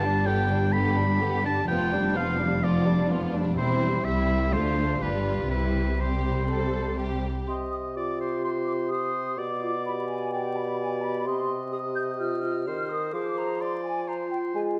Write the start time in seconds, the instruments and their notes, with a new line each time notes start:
Already playing: double bass section G1, cello section G2, oboe A5
0.04 viola section G3, violin section D4
0.26 viola section D3, violin section B3 G4, oboe G5
0.49 viola section G3, violin section D4
0.72 viola section D3, violin section B3 G4, oboe B5
0.97 viola section G3, violin section D4
1.20 viola section D3, violin section B3 G4
1.44 viola section G3, violin section D4, oboe A5
1.68 double bass section F1, cello section F2, viola section F3, violin section B3 F4, oboe G5
1.91 viola section G3, violin section D4
2.14 viola section F3, violin section B3 F4, oboe F5
2.38 viola section G3, violin section D4
2.62 viola section F3, violin section B3 F4, oboe D5
2.86 viola section G3, violin section D4
3.10 viola section F3, violin section B3 F4
3.34 viola section G3, violin section D4
3.57 double bass section E1, cello section E2, viola section G3, violin section C4 E4, oboe C5
4.04 cello section C2, double bass section C2, viola section G3, violin section C4 E4, oboe E5
4.52 double bass section D2, cello section D2, viola section A3, violin section D4 F4, oboe C5
4.99 double bass section G1, cello section G2, viola section G3, violin section D4 F4, oboe B4
5.50 double bass section C2, cello section C3, viola section G3, violin section C4 E4, oboe B4
5.99 viola section G3, violin section C4 G4, oboe C5
6.49 violin section A4
6.99 violin section G4
7.48 bassoon C3, clarinet G4, oboe D#5, flute section C6
7.72 flute section D#6
7.95 clarinet F4, oboe D5, flute section D6
8.20 oboe C5
8.42 oboe C5, flute section C6
8.66 flute section D6
8.89 clarinet G4, oboe C5, flute section D#6
9.37 bassoon B2, clarinet G4, oboe D5, flute section D6
9.63 clarinet F4
9.85 clarinet G4, flute section B5
10.08 flute section G#5
10.31 clarinet G4, oboe D5, flute section G5
10.55 flute section B5
10.79 flute section G#5
11.02 flute section B5
11.25 bassoon C3, oboe D#5, flute section C6
11.72 clarinet G4, flute section D#6
11.95 flute section G6
12.18 clarinet F4, flute section F6
12.43 clarinet F4
12.66 bassoon D#3, clarinet G4, oboe C5
12.89 clarinet A#4, flute section D#6
13.13 bassoon F3, clarinet G#4, oboe C5, flute section D6
13.38 flute section A#5
13.60 oboe D5, flute section C6
13.84 flute section G#5
14.08 clarinet F4, oboe C5, flute section A#5
14.31 flute section G5
14.54 bassoon G#3, clarinet F4, flute section G#5